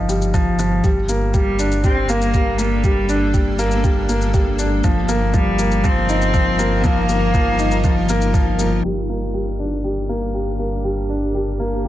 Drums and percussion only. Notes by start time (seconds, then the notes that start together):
0.09 shaker
0.22 shaker
0.34 kick, shaker
0.59 shaker
0.84 kick, shaker
1.09 shaker
1.34 kick, shaker
1.59 shaker
1.72 shaker
1.84 kick, shaker
2.09 shaker
2.22 shaker
2.34 kick, shaker
2.59 shaker
2.84 kick, shaker
3.09 shaker
3.34 kick, shaker
3.59 shaker
3.71 shaker
3.84 kick, shaker
4.09 shaker
4.21 shaker
4.34 kick, shaker
4.59 shaker
4.84 kick, shaker
5.09 shaker
5.34 kick, shaker
5.59 shaker
5.71 shaker
5.84 kick, shaker
6.09 shaker
6.22 shaker
6.34 kick, shaker
6.59 shaker
6.84 kick, shaker
7.09 shaker
7.34 kick, shaker
7.59 shaker
7.71 shaker
7.84 kick, shaker
8.09 shaker
8.22 shaker
8.34 kick, shaker
8.59 shaker
8.84 shaker
9.09 shaker
9.34 shaker
9.59 shaker
9.72 shaker
9.84 shaker
10.09 shaker
10.34 shaker
10.59 shaker
10.84 shaker
11.09 shaker
11.34 shaker
11.59 shaker
11.72 shaker
11.85 shaker